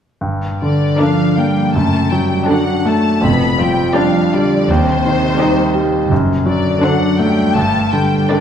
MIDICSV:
0, 0, Header, 1, 7, 480
1, 0, Start_track
1, 0, Key_signature, -2, "minor"
1, 0, Tempo, 779221
1, 137, Time_signature, 4, 2, 24, 8
1, 616, Tempo, 742574
1, 2056, Tempo, 720288
1, 4456, Tempo, 743494
1, 5472, End_track
2, 0, Start_track
2, 0, Title_t, "Violin section"
2, 0, Program_c, 0, 48
2, 377, Note_on_c, 0, 74, 44
2, 599, Note_off_c, 0, 74, 0
2, 613, Note_on_c, 0, 77, 50
2, 859, Note_off_c, 0, 77, 0
2, 859, Note_on_c, 0, 79, 44
2, 1095, Note_on_c, 0, 81, 61
2, 1099, Note_off_c, 0, 79, 0
2, 1331, Note_off_c, 0, 81, 0
2, 1339, Note_on_c, 0, 79, 47
2, 1579, Note_off_c, 0, 79, 0
2, 1581, Note_on_c, 0, 78, 46
2, 1816, Note_off_c, 0, 78, 0
2, 1823, Note_on_c, 0, 81, 53
2, 2057, Note_on_c, 0, 83, 56
2, 2058, Note_off_c, 0, 81, 0
2, 2301, Note_off_c, 0, 83, 0
2, 2305, Note_on_c, 0, 79, 58
2, 2538, Note_on_c, 0, 77, 53
2, 2547, Note_off_c, 0, 79, 0
2, 2779, Note_off_c, 0, 77, 0
2, 2791, Note_on_c, 0, 74, 57
2, 3028, Note_on_c, 0, 72, 70
2, 3031, Note_off_c, 0, 74, 0
2, 3976, Note_off_c, 0, 72, 0
2, 4216, Note_on_c, 0, 74, 54
2, 4440, Note_off_c, 0, 74, 0
2, 4457, Note_on_c, 0, 78, 53
2, 4684, Note_on_c, 0, 79, 58
2, 4692, Note_off_c, 0, 78, 0
2, 4922, Note_on_c, 0, 81, 67
2, 4925, Note_off_c, 0, 79, 0
2, 5163, Note_on_c, 0, 79, 54
2, 5166, Note_off_c, 0, 81, 0
2, 5410, Note_on_c, 0, 74, 44
2, 5411, Note_off_c, 0, 79, 0
2, 5472, Note_off_c, 0, 74, 0
2, 5472, End_track
3, 0, Start_track
3, 0, Title_t, "Violin section"
3, 0, Program_c, 1, 48
3, 611, Note_on_c, 1, 70, 36
3, 612, Note_on_c, 1, 74, 38
3, 976, Note_off_c, 1, 70, 0
3, 976, Note_off_c, 1, 74, 0
3, 1575, Note_on_c, 1, 69, 37
3, 1576, Note_on_c, 1, 74, 37
3, 1934, Note_off_c, 1, 69, 0
3, 1934, Note_off_c, 1, 74, 0
3, 2538, Note_on_c, 1, 67, 42
3, 2538, Note_on_c, 1, 74, 45
3, 2902, Note_off_c, 1, 67, 0
3, 2902, Note_off_c, 1, 74, 0
3, 3505, Note_on_c, 1, 72, 42
3, 3506, Note_on_c, 1, 67, 41
3, 3855, Note_off_c, 1, 67, 0
3, 3855, Note_off_c, 1, 72, 0
3, 4453, Note_on_c, 1, 69, 45
3, 4455, Note_on_c, 1, 72, 46
3, 4806, Note_off_c, 1, 69, 0
3, 4807, Note_off_c, 1, 72, 0
3, 5415, Note_on_c, 1, 70, 38
3, 5415, Note_on_c, 1, 74, 39
3, 5472, Note_off_c, 1, 70, 0
3, 5472, Note_off_c, 1, 74, 0
3, 5472, End_track
4, 0, Start_track
4, 0, Title_t, "Viola section"
4, 0, Program_c, 2, 48
4, 613, Note_on_c, 2, 50, 39
4, 615, Note_on_c, 2, 62, 40
4, 977, Note_off_c, 2, 50, 0
4, 978, Note_off_c, 2, 62, 0
4, 1572, Note_on_c, 2, 62, 47
4, 1573, Note_on_c, 2, 50, 44
4, 1932, Note_off_c, 2, 62, 0
4, 1933, Note_off_c, 2, 50, 0
4, 2537, Note_on_c, 2, 62, 43
4, 2538, Note_on_c, 2, 55, 44
4, 2901, Note_off_c, 2, 62, 0
4, 2902, Note_off_c, 2, 55, 0
4, 3498, Note_on_c, 2, 63, 54
4, 3500, Note_on_c, 2, 55, 53
4, 3851, Note_off_c, 2, 63, 0
4, 3852, Note_off_c, 2, 55, 0
4, 4452, Note_on_c, 2, 50, 46
4, 4452, Note_on_c, 2, 62, 46
4, 4805, Note_off_c, 2, 50, 0
4, 4806, Note_off_c, 2, 62, 0
4, 5410, Note_on_c, 2, 50, 45
4, 5410, Note_on_c, 2, 62, 41
4, 5472, Note_off_c, 2, 50, 0
4, 5472, Note_off_c, 2, 62, 0
4, 5472, End_track
5, 0, Start_track
5, 0, Title_t, "Cello section"
5, 0, Program_c, 3, 48
5, 382, Note_on_c, 3, 50, 34
5, 602, Note_off_c, 3, 50, 0
5, 616, Note_on_c, 3, 53, 42
5, 857, Note_on_c, 3, 55, 38
5, 861, Note_off_c, 3, 53, 0
5, 1098, Note_off_c, 3, 55, 0
5, 1100, Note_on_c, 3, 57, 45
5, 1337, Note_on_c, 3, 55, 41
5, 1338, Note_off_c, 3, 57, 0
5, 1578, Note_off_c, 3, 55, 0
5, 1579, Note_on_c, 3, 54, 47
5, 1819, Note_off_c, 3, 54, 0
5, 1819, Note_on_c, 3, 57, 42
5, 2056, Note_off_c, 3, 57, 0
5, 2058, Note_on_c, 3, 59, 51
5, 2296, Note_off_c, 3, 59, 0
5, 2297, Note_on_c, 3, 55, 43
5, 2543, Note_off_c, 3, 55, 0
5, 2544, Note_on_c, 3, 53, 47
5, 2787, Note_off_c, 3, 53, 0
5, 2788, Note_on_c, 3, 50, 49
5, 3024, Note_off_c, 3, 50, 0
5, 3027, Note_on_c, 3, 48, 55
5, 3976, Note_off_c, 3, 48, 0
5, 4219, Note_on_c, 3, 50, 38
5, 4441, Note_off_c, 3, 50, 0
5, 4459, Note_on_c, 3, 54, 48
5, 4693, Note_off_c, 3, 54, 0
5, 4694, Note_on_c, 3, 55, 54
5, 4926, Note_on_c, 3, 57, 48
5, 4930, Note_off_c, 3, 55, 0
5, 5164, Note_off_c, 3, 57, 0
5, 5167, Note_on_c, 3, 55, 43
5, 5411, Note_on_c, 3, 50, 44
5, 5413, Note_off_c, 3, 55, 0
5, 5472, Note_off_c, 3, 50, 0
5, 5472, End_track
6, 0, Start_track
6, 0, Title_t, "Grand piano"
6, 0, Program_c, 4, 0
6, 131, Note_on_c, 4, 43, 41
6, 245, Control_c, 4, 64, 127
6, 383, Note_on_c, 4, 50, 34
6, 620, Note_on_c, 4, 62, 34
6, 766, Note_off_c, 4, 50, 0
6, 859, Note_on_c, 4, 58, 27
6, 1006, Note_off_c, 4, 62, 0
6, 1071, Note_off_c, 4, 43, 0
6, 1099, Note_off_c, 4, 58, 0
6, 1104, Note_on_c, 4, 42, 39
6, 1112, Control_c, 4, 64, 0
6, 1201, Control_c, 4, 64, 127
6, 1340, Note_on_c, 4, 54, 31
6, 1579, Note_on_c, 4, 62, 33
6, 1725, Note_off_c, 4, 54, 0
6, 1815, Note_on_c, 4, 57, 35
6, 1962, Note_off_c, 4, 62, 0
6, 2032, Note_off_c, 4, 42, 0
6, 2047, Note_on_c, 4, 41, 47
6, 2054, Note_off_c, 4, 57, 0
6, 2068, Control_c, 4, 64, 0
6, 2159, Control_c, 4, 64, 127
6, 2294, Note_on_c, 4, 53, 37
6, 2538, Note_on_c, 4, 62, 42
6, 2687, Note_off_c, 4, 53, 0
6, 2797, Note_on_c, 4, 55, 36
6, 2928, Note_off_c, 4, 62, 0
6, 2997, Note_off_c, 4, 41, 0
6, 3034, Note_off_c, 4, 55, 0
6, 3039, Control_c, 4, 64, 0
6, 3039, Note_on_c, 4, 39, 50
6, 3132, Control_c, 4, 64, 127
6, 3276, Note_on_c, 4, 51, 38
6, 3512, Note_on_c, 4, 63, 42
6, 3651, Note_off_c, 4, 51, 0
6, 3733, Note_on_c, 4, 55, 38
6, 3885, Note_off_c, 4, 63, 0
6, 3956, Note_off_c, 4, 39, 0
6, 3973, Note_off_c, 4, 55, 0
6, 3981, Note_on_c, 4, 42, 45
6, 3988, Control_c, 4, 64, 0
6, 4108, Control_c, 4, 64, 127
6, 4210, Note_on_c, 4, 54, 36
6, 4446, Note_on_c, 4, 62, 40
6, 4594, Note_off_c, 4, 54, 0
6, 4692, Note_on_c, 4, 57, 37
6, 4829, Note_off_c, 4, 62, 0
6, 4905, Note_off_c, 4, 42, 0
6, 4925, Note_on_c, 4, 43, 43
6, 4929, Note_off_c, 4, 57, 0
6, 4940, Control_c, 4, 64, 0
6, 5047, Control_c, 4, 64, 127
6, 5166, Note_on_c, 4, 50, 37
6, 5417, Note_on_c, 4, 62, 37
6, 5472, Note_off_c, 4, 43, 0
6, 5472, Note_off_c, 4, 50, 0
6, 5472, Note_off_c, 4, 62, 0
6, 5472, End_track
7, 0, Start_track
7, 0, Title_t, "Double bass section"
7, 0, Program_c, 5, 48
7, 138, Note_on_c, 5, 31, 36
7, 522, Note_off_c, 5, 31, 0
7, 1101, Note_on_c, 5, 30, 44
7, 1481, Note_off_c, 5, 30, 0
7, 2055, Note_on_c, 5, 29, 46
7, 2444, Note_off_c, 5, 29, 0
7, 3030, Note_on_c, 5, 39, 52
7, 3410, Note_off_c, 5, 39, 0
7, 3977, Note_on_c, 5, 30, 56
7, 4358, Note_off_c, 5, 30, 0
7, 4928, Note_on_c, 5, 31, 54
7, 5314, Note_off_c, 5, 31, 0
7, 5472, End_track
0, 0, End_of_file